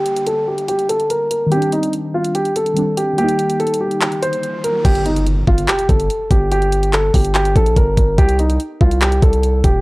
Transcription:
0.00 1.45 D3 medium
0.00 1.47 G3 medium
0.00 1.49 A#3 medium
0.00 1.50 D4 medium
0.00 0.24 G4 medium
0.00 downlifter medium
0.06 closed hi-hat medium
0.16 closed hi-hat medium
0.26 0.44 A4 medium
0.26 closed hi-hat medium
0.48 0.65 G4 medium
0.58 closed hi-hat medium
0.68 0.86 G4 medium
0.68 closed hi-hat medium
0.79 closed hi-hat medium
0.89 1.07 A4 medium
0.89 closed hi-hat medium
1.00 closed hi-hat medium
1.10 1.28 A#4 medium
1.10 closed hi-hat medium
1.31 1.49 A#4 medium
1.31 closed hi-hat medium
1.46 2.71 D#3 medium
1.46 2.73 G3 medium
1.52 2.75 C4 medium
1.52 1.69 G4 loud
1.52 closed hi-hat medium
1.57 2.77 D4 medium
1.62 closed hi-hat medium
1.72 1.90 D#4 medium
1.72 closed hi-hat medium
1.83 closed hi-hat medium
1.93 closed hi-hat medium
2.14 2.32 F4 medium
2.24 closed hi-hat medium
2.35 2.53 G4 medium
2.35 closed hi-hat medium
2.45 closed hi-hat medium
2.56 2.95 A4 medium
2.56 closed hi-hat medium
2.66 closed hi-hat medium
2.74 3.12 D#3 soft
2.74 3.15 G3 soft
2.74 3.19 C4 soft
2.74 closed hi-hat medium
2.79 3.19 D4 medium
2.97 3.15 G4 medium
2.97 closed hi-hat medium
3.13 4.79 D#3 medium
3.13 4.81 G3 medium
3.18 4.82 A#3 medium
3.18 3.57 G4 loud
3.18 closed hi-hat medium
3.18 riser medium
3.24 4.84 D#4 medium
3.29 closed hi-hat medium
3.39 closed hi-hat medium
3.50 closed hi-hat medium
3.60 3.78 A4 medium
3.60 closed hi-hat soft
3.67 closed hi-hat medium
3.74 closed hi-hat medium
3.81 3.99 G4 medium
3.91 closed hi-hat medium
4.01 4.19 G4 medium
4.01 clap loud
4.01 closed hi-hat medium
4.12 closed hi-hat medium
4.22 4.62 C5 medium
4.22 closed hi-hat medium
4.33 closed hi-hat medium
4.43 closed hi-hat medium
4.64 4.82 A#4 medium
4.64 closed hi-hat medium
4.85 5.45 G1 loud
4.85 5.03 G4 medium
4.85 kick loud
4.85 closed hi-hat medium
4.85 crash medium
4.85 impact medium
4.95 closed hi-hat medium
5.06 5.24 D#4 medium
5.06 closed hi-hat medium
5.16 closed hi-hat medium
5.27 closed hi-hat medium
5.47 5.67 G1 loud
5.47 5.65 F4 medium
5.47 kick medium
5.58 closed hi-hat medium
5.68 5.86 G4 medium
5.68 clap loud
5.68 closed hi-hat medium
5.79 closed hi-hat medium
5.89 6.09 G1 loud
5.89 6.28 A4 medium
5.89 kick loud
5.89 closed hi-hat medium
6.00 closed hi-hat medium
6.10 closed hi-hat medium
6.31 7.11 G1 loud
6.31 6.49 G4 medium
6.31 kick medium
6.31 closed hi-hat medium
6.52 6.91 G4 loud
6.52 closed hi-hat medium
6.62 closed hi-hat medium
6.72 closed hi-hat medium
6.83 closed hi-hat medium
6.93 7.11 A4 medium
6.93 clap loud
6.93 closed hi-hat medium
7.14 7.54 G1 loud
7.14 7.32 G4 medium
7.14 kick medium
7.14 open hi-hat medium
7.25 closed hi-hat medium
7.35 7.53 G4 medium
7.35 clap loud
7.35 closed hi-hat medium
7.45 closed hi-hat medium
7.56 7.76 A#1 loud
7.56 7.74 A4 loud
7.56 kick loud
7.56 closed hi-hat medium
7.66 closed hi-hat medium
7.76 7.97 G1 loud
7.76 7.94 A#4 medium
7.76 kick loud
7.76 closed hi-hat medium
7.97 8.17 G1 loud
7.97 8.15 A#4 medium
7.97 kick medium
7.97 closed hi-hat medium
8.18 8.58 C2 loud
8.18 8.36 G4 loud
8.18 kick loud
8.18 closed hi-hat medium
8.29 closed hi-hat medium
8.39 8.57 D#4 medium
8.39 closed hi-hat medium
8.50 closed hi-hat medium
8.60 closed hi-hat medium
8.81 9.21 C2 loud
8.81 8.99 F4 medium
8.81 kick medium
8.91 closed hi-hat medium
9.02 9.19 G4 medium
9.02 clap loud
9.02 closed hi-hat medium
9.12 closed hi-hat medium
9.22 9.62 C2 loud
9.22 9.62 A4 medium
9.22 kick loud
9.22 closed hi-hat medium
9.33 closed hi-hat medium
9.43 closed hi-hat medium
9.64 9.81 D#1 loud
9.64 9.81 G4 medium
9.64 kick loud
9.64 closed hi-hat medium

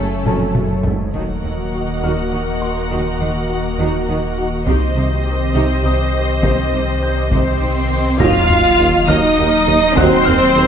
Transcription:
0.00 1.13 F#1 medium
0.00 1.11 F#3 medium
0.00 0.81 A3 medium
0.00 1.11 A3 medium
0.00 0.71 C#4 medium
0.00 0.85 A4 medium
0.00 1.11 A4 medium
0.00 1.15 C#5 medium
0.00 0.51 F5 medium
0.25 0.34 F#1 medium
0.25 0.38 F#1 soft
0.25 0.53 F2 soft
0.25 0.53 F#3 soft
0.25 0.53 C#4 medium
0.25 1.10 A4 soft
0.25 1.11 A5 soft
0.25 taiko mid medium
0.55 0.63 F#1 soft
0.55 0.67 F#1 soft
0.55 0.85 F#2 soft
0.55 0.64 C#3 soft
0.55 0.64 F#3 soft
0.55 taiko mid medium
0.84 0.93 F#1 soft
0.84 0.97 F#1 soft
0.84 1.14 G#2 soft
0.84 0.93 C#3 soft
0.84 0.93 A3 soft
0.84 taiko low medium
1.13 4.69 D#1 medium
1.13 1.22 D#2 soft
1.13 4.63 D#3 medium
1.13 1.23 D#3 soft
1.13 4.63 A#3 soft
1.13 1.42 D#4 soft
1.13 4.63 F#4 medium
1.13 1.42 F#4 soft
1.13 4.63 A#4 soft
1.13 4.63 D#5 medium
1.13 4.63 F#5 soft
1.13 taiko soft
1.13 impact soft
1.43 1.51 D#2 soft
1.43 1.52 D#3 soft
1.43 1.52 D#4 soft
1.73 1.83 D#3 soft
1.73 1.83 F#4 soft
2.02 2.10 D#2 soft
2.02 2.10 D#3 soft
2.02 2.30 D#4 soft
2.02 2.30 F#4 soft
2.02 3.76 F6 soft
2.32 2.40 D#2 soft
2.32 2.40 D#3 soft
2.32 2.40 D#4 soft
2.61 2.71 D#3 soft
2.61 2.71 F#4 soft
2.61 4.34 C6 soft
2.91 2.99 D#2 soft
2.91 2.99 D#3 medium
2.91 3.18 D#4 soft
2.91 3.18 F#4 soft
3.20 3.28 D#2 soft
3.20 3.28 D#3 soft
3.20 3.29 D#4 soft
3.48 3.59 D#3 soft
3.48 3.59 F#4 soft
3.79 3.87 D#2 medium
3.79 3.87 D#3 medium
3.79 4.07 D#4 soft
3.79 4.06 F#4 medium
4.08 4.16 D#2 soft
4.08 4.16 D#3 soft
4.08 4.17 D#4 soft
4.37 4.48 D#3 medium
4.37 4.48 F#4 medium
4.67 4.75 C2 medium
4.67 8.19 C2 medium
4.67 4.75 C3 medium
4.67 8.16 D#3 medium
4.67 8.20 C4 medium
4.67 4.94 D#4 medium
4.67 4.94 G4 medium
4.67 8.20 G4 medium
4.67 7.28 C5 medium
4.67 8.16 D#5 medium
4.67 7.28 D#5 medium
4.67 taiko medium
4.96 5.04 C2 soft
4.96 5.04 C3 soft
4.96 5.04 D#4 soft
5.24 5.35 D#3 medium
5.24 5.35 G4 medium
5.55 5.63 C2 medium
5.55 5.63 C3 medium
5.55 5.82 D#4 medium
5.55 5.82 G4 medium
5.84 5.92 C2 soft
5.84 5.92 C3 soft
5.84 5.92 D#4 soft
5.84 7.58 D#6 soft
6.13 6.24 D#3 soft
6.13 6.24 G4 soft
6.42 6.51 C2 soft
6.42 6.51 C3 soft
6.42 6.70 D#4 soft
6.42 6.70 G4 soft
6.42 taiko medium
6.42 reverse cymbal soft
6.72 6.81 C2 soft
6.72 6.81 C3 soft
6.72 6.80 D#4 soft
7.02 7.13 D#3 soft
7.02 7.12 G4 soft
7.02 8.16 G6 soft
7.31 7.40 C2 soft
7.31 7.39 C3 medium
7.31 8.16 C4 medium
7.31 7.59 D#4 soft
7.31 7.59 G4 soft
7.31 8.16 C5 medium
7.31 8.16 C6 medium
7.31 taiko medium
7.61 7.69 C2 soft
7.61 7.69 C3 soft
7.61 7.69 D#4 soft
7.89 8.00 D#3 soft
7.89 8.00 G4 soft
8.19 10.67 D#1 medium
8.19 8.32 D#2 medium
8.19 8.28 D#2 medium
8.19 10.67 D#3 medium
8.19 8.47 F#3 medium
8.19 10.67 F#3 medium
8.19 10.67 A#3 medium
8.19 8.47 D#4 medium
8.19 9.08 F4 loud
8.19 9.08 F4 medium
8.19 10.67 D#5 medium
8.19 9.08 F5 loud
8.19 9.07 F6 loud
8.19 9.93 A#6 medium
8.19 taiko loud
8.19 sub drop medium
8.49 8.58 D#2 medium
8.49 8.62 D#2 medium
8.49 8.57 D#3 medium
8.49 8.58 F#3 medium
8.49 taiko low-mid medium
8.79 8.87 D#2 medium
8.79 8.91 D#2 medium
8.79 8.87 D#3 medium
8.79 8.87 A#3 medium
9.08 9.16 D#2 medium
9.08 9.20 D#2 medium
9.08 9.36 F#3 medium
9.08 9.96 D#4 medium
9.08 9.95 D#4 medium
9.08 9.36 D#4 medium
9.08 9.95 D#5 medium
9.08 9.96 D#6 loud
9.08 10.24 F6 medium
9.08 taiko medium
9.38 9.50 D#2 medium
9.38 9.46 D#2 medium
9.38 9.46 D#3 medium
9.38 9.47 F#3 medium
9.67 9.79 D#2 medium
9.67 9.75 D#2 medium
9.67 9.76 D#3 medium
9.67 9.76 A#3 medium
9.96 10.04 D#2 loud
9.96 10.09 D#2 loud
9.96 10.24 F#3 medium
9.96 10.67 C4 loud
9.96 10.24 D#4 loud
9.96 10.67 C5 loud
9.96 10.67 F#5 medium
9.96 10.67 C6 loud
9.96 10.67 F#6 medium
9.96 taiko loud
10.25 10.34 D#2 medium
10.25 10.38 D#2 medium
10.25 10.35 D#3 medium
10.25 10.35 F#3 medium
10.25 10.67 F6 medium
10.25 taiko low-mid medium
10.55 10.63 D#2 medium
10.55 10.67 D#2 medium
10.55 10.65 D#3 medium
10.55 10.65 A#3 medium

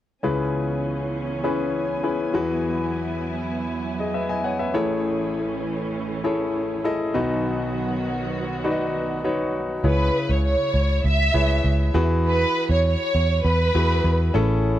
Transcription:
0.23 2.30 C#2 soft
0.23 2.30 C#3 medium
0.23 2.32 E3 medium
0.23 1.23 C#4 medium
0.23 2.32 C#4 medium
0.23 1.23 E4 medium
0.23 1.23 G#4 medium
0.23 1.24 B4 medium
0.23 7.11 G#5 medium
1.44 1.94 C#4 medium
1.44 1.94 E4 medium
1.44 1.94 G#4 medium
1.44 1.94 B4 medium
2.03 2.34 C#4 soft
2.03 2.32 E4 medium
2.03 2.32 G#4 soft
2.03 2.33 B4 medium
2.34 4.70 E2 medium
2.34 4.70 E3 medium
2.34 4.72 F#3 medium
2.34 3.33 E4 medium
2.34 4.72 E4 medium
2.34 3.34 F#4 medium
2.34 3.34 G#4 medium
2.34 3.34 B4 medium
4.00 4.14 G#4 soft
4.00 4.14 D#5 soft
4.14 4.29 B4 soft
4.14 4.28 E5 soft
4.29 4.44 D#5 soft
4.29 4.44 G#5 medium
4.44 4.59 C#5 soft
4.44 4.58 F#5 soft
4.59 4.88 B4 soft
4.59 4.88 E5 medium
4.74 7.11 A1 medium
4.74 7.11 A2 medium
4.74 7.13 E3 medium
4.74 7.13 A3 medium
4.74 7.13 C#4 medium
4.74 5.74 E4 medium
4.74 5.74 G#4 medium
4.74 5.74 A4 medium
4.74 5.74 C#5 medium
6.24 6.74 E4 medium
6.24 6.74 G#4 medium
6.24 6.74 A4 medium
6.24 6.74 C#5 medium
6.84 7.14 E4 medium
6.84 7.15 G#4 medium
6.84 7.15 A4 medium
6.84 7.14 D#5 medium
7.14 9.51 B1 medium
7.14 9.51 B2 medium
7.14 9.82 D#3 medium
7.14 9.83 F#3 medium
7.14 9.83 B3 medium
7.14 8.14 D#4 medium
7.14 8.14 F#4 medium
7.14 9.83 F#4 medium
7.14 8.14 B4 medium
7.14 8.15 D#5 medium
8.64 9.14 D#4 medium
8.64 9.14 F#4 medium
8.64 9.15 B4 medium
8.64 8.71 D5 soft
8.71 9.18 D#5 medium
9.24 9.74 D#4 medium
9.24 9.74 F#4 medium
9.24 9.75 B4 medium
9.24 9.75 C#5 medium
9.84 10.09 C#2 medium
9.84 10.71 C#3 soft
9.84 10.84 E4 medium
9.84 10.84 G#4 soft
9.84 10.84 B4 soft
9.84 10.27 B4 medium
9.84 10.84 C#5 medium
10.30 10.54 C#2 medium
10.30 10.45 C#5 medium
10.46 11.01 C#5 medium
10.74 10.99 C#2 medium
11.04 11.29 C#2 medium
11.04 11.95 E5 loud
11.34 11.59 C#2 medium
11.34 11.93 E4 soft
11.34 11.93 G#4 medium
11.34 11.93 B4 medium
11.34 11.95 C#5 medium
11.64 11.89 C#2 medium
11.94 12.44 E2 medium
11.94 12.81 E3 medium
11.94 12.94 E4 medium
11.94 12.94 F#4 medium
11.94 12.94 G#4 medium
11.94 12.95 B4 medium
12.26 12.68 B4 medium
12.70 12.94 E2 medium
12.70 12.85 C#5 medium
12.86 13.42 C#5 medium
13.15 13.39 E2 medium
13.45 13.69 E2 medium
13.45 14.36 B4 medium
13.75 14.00 E2 medium
13.75 14.33 E4 medium
13.75 14.35 F#4 medium
13.75 14.33 G#4 soft
13.75 14.35 B4 medium
14.04 14.29 E2 medium
14.34 14.79 A1 medium
14.34 14.79 A2 medium
14.34 14.79 C#4 medium
14.34 14.79 E4 medium
14.34 14.79 G#4 medium
14.34 14.79 A4 medium

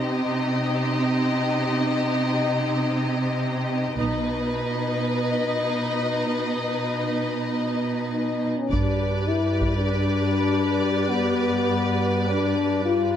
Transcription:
0.00 3.94 C3 soft
0.00 3.94 C4 soft
0.00 3.94 D#4 soft
0.00 3.94 G4 soft
0.00 3.94 D#5 soft
3.98 4.53 B1 soft
3.98 8.49 B2 soft
3.98 8.49 D#4 soft
3.98 8.49 B4 soft
3.98 8.49 D#5 soft
8.13 8.55 D#4 soft
8.58 8.73 C#4 soft
8.71 9.28 G1 soft
8.71 13.16 G2 soft
8.71 9.31 D4 soft
8.71 13.16 G4 soft
8.71 13.16 B4 soft
8.71 13.16 D5 soft
8.71 taiko soft
9.28 9.74 E4 soft
9.61 taiko soft
9.76 9.90 D4 soft
9.93 11.07 D4 medium
11.08 12.25 B3 medium
12.28 12.85 D4 medium
12.84 13.16 F4 medium

